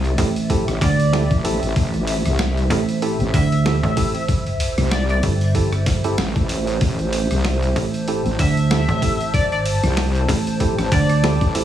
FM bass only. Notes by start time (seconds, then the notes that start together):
0.18 A1
0.81 D2
2.70 A1
3.34 D2
3.83 A1
5.23 G1
7.76 A1
8.39 D2
8.88 A1
9.53 G#1
10.28 A1
10.92 D2